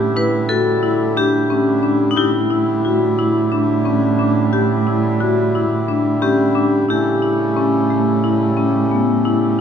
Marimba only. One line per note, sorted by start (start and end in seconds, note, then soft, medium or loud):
0.00 0.11 G4 medium
0.16 0.45 E4 medium
0.49 0.79 F#4 medium
0.83 1.12 E4 medium
1.17 1.46 D4 medium
1.50 1.80 C#4 medium
1.83 2.13 D4 medium
2.17 2.46 G4 medium
2.50 2.80 E4 medium
2.85 3.14 F#4 medium
3.19 3.48 E4 medium
3.52 3.81 D4 medium
3.85 4.15 C#4 medium
4.19 4.49 D4 medium
4.53 4.82 G4 medium
4.87 5.16 E4 medium
5.20 5.50 F#4 medium
5.55 5.84 E4 medium
5.88 6.18 D4 medium
6.22 6.51 C#4 medium
6.55 6.85 D4 medium
6.88 7.18 E4 medium
7.22 7.52 E4 medium
7.57 7.86 C#4 medium
7.90 8.20 A3 medium
8.24 8.53 E4 medium
8.57 8.87 C#4 medium
8.91 9.21 B3 medium
9.25 9.55 E4 medium